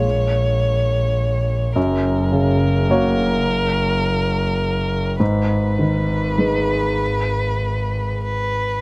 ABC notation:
X:1
M:3/4
L:1/8
Q:1/4=104
K:Abdor
V:1 name="Violin"
d6 | B6- | B6 | c6- |
c4 c2 |]
V:2 name="Grand piano"
[A,Fd]6 | G,,2 D,2 [B,Gd]2- | [B,Gd]6 | A,,2 E,2 [A,Ec]2- |
[A,Ec]6 |]
V:3 name="Double bass" clef=bass
B,,,6 | G,,,6- | G,,,6 | A,,,6- |
A,,,6 |]